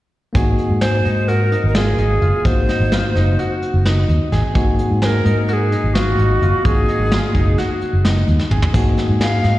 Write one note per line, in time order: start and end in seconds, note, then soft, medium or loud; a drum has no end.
0.33 0.55 G#1 medium
0.33 2.40 A#3 medium
0.33 2.41 C4 medium
0.33 2.41 D#4 medium
0.33 2.42 F#4 medium
0.33 0.75 G#4 medium
0.33 kick medium
0.33 closed hi-hat medium
0.58 closed hi-hat medium
0.70 1.00 G#2 medium
0.81 1.02 G#4 medium
0.81 1.30 C5 medium
0.81 snare medium
0.81 closed hi-hat medium
1.05 1.55 G#2 medium
1.05 1.25 D#4 medium
1.05 closed hi-hat medium
1.28 1.48 F#4 medium
1.28 1.68 A#4 medium
1.28 closed hi-hat medium
1.52 1.72 D#4 medium
1.52 closed hi-hat medium
1.64 1.93 G#1 medium
1.68 1.77 A#4 medium
1.75 1.95 F4 medium
1.75 2.47 G#4 medium
1.75 snare loud
1.75 closed hi-hat medium
1.98 2.18 G#1 medium
1.98 2.19 D#4 medium
1.98 closed hi-hat medium
2.22 2.32 F#1 medium
2.22 2.62 F4 medium
2.22 closed hi-hat medium
2.43 2.65 G#1 medium
2.43 4.50 A#3 medium
2.43 4.50 C4 medium
2.43 4.51 D#4 medium
2.43 4.52 F#4 medium
2.43 3.39 C5 medium
2.43 kick medium
2.43 closed hi-hat medium
2.69 2.89 D#4 medium
2.69 snare soft
2.69 closed hi-hat medium
2.80 3.00 G#1 medium
2.92 3.12 F4 medium
2.92 snare medium
2.92 closed hi-hat medium
3.15 3.35 F#1 medium
3.15 3.35 D#4 medium
3.15 snare soft
3.15 closed hi-hat soft
3.39 3.79 F#4 medium
3.39 closed hi-hat medium
3.62 closed hi-hat soft
3.74 4.03 F#1 medium
3.85 4.26 D#4 medium
3.85 snare medium
3.85 closed hi-hat medium
4.09 4.18 D#2 medium
4.09 closed hi-hat soft
4.32 4.42 G#1 medium
4.32 4.52 G#4 medium
4.32 snare soft
4.32 closed hi-hat soft
4.54 4.75 G#1 medium
4.54 6.60 A#3 medium
4.54 6.61 C4 medium
4.54 6.61 D#4 medium
4.54 6.62 F#4 medium
4.54 4.96 G#4 medium
4.54 kick loud
4.54 closed hi-hat medium
4.79 closed hi-hat medium
4.91 5.20 G#2 medium
5.02 5.22 G#4 medium
5.02 5.48 A#4 medium
5.02 5.06 C5 medium
5.02 snare medium
5.02 closed hi-hat medium
5.25 5.74 G#2 medium
5.25 5.45 D#4 medium
5.25 closed hi-hat medium
5.48 5.69 F#4 medium
5.48 5.54 A#4 medium
5.48 closed hi-hat medium
5.53 5.95 G#4 medium
5.72 5.92 D#4 medium
5.72 closed hi-hat medium
5.84 6.13 G#1 medium
5.94 6.15 F4 medium
5.94 6.67 F#4 medium
5.94 snare medium
5.94 closed hi-hat medium
6.18 6.38 G#1 medium
6.18 6.38 D#4 medium
6.18 closed hi-hat medium
6.42 6.51 F#1 medium
6.42 6.82 F4 medium
6.42 closed hi-hat soft
6.64 6.85 G#1 medium
6.64 8.70 A#3 medium
6.64 8.70 C4 soft
6.64 8.71 D#4 medium
6.64 8.71 F#4 medium
6.64 7.58 G#4 medium
6.64 kick medium
6.64 closed hi-hat medium
6.88 7.08 D#4 medium
6.88 closed hi-hat soft
7.00 7.19 G#1 medium
7.11 7.31 F4 medium
7.11 snare medium
7.11 closed hi-hat medium
7.35 7.54 F#1 medium
7.35 7.55 D#4 medium
7.35 kick medium
7.35 closed hi-hat soft
7.58 7.98 F#4 medium
7.58 snare soft
7.58 closed hi-hat medium
7.81 closed hi-hat soft
7.93 8.22 F#1 medium
8.05 8.45 D#4 medium
8.05 snare medium
8.05 closed hi-hat medium
8.28 8.38 D#2 medium
8.28 closed hi-hat soft
8.39 snare soft
8.51 8.61 G#1 medium
8.51 8.71 G#4 medium
8.51 mid tom soft
8.62 floor tom medium
8.73 8.94 G#1 medium
8.73 9.59 A#3 medium
8.73 9.59 C4 medium
8.73 9.59 D#4 medium
8.73 9.59 F#4 medium
8.73 9.14 G#4 medium
8.73 kick medium
8.73 closed hi-hat medium
8.73 splash medium
8.98 snare soft
8.98 closed hi-hat medium
9.09 9.39 G#2 medium
9.21 9.41 G#4 medium
9.21 9.59 F5 medium
9.21 snare medium
9.21 closed hi-hat medium
9.44 9.59 G#2 medium
9.44 9.59 D#4 medium
9.44 snare soft
9.44 closed hi-hat medium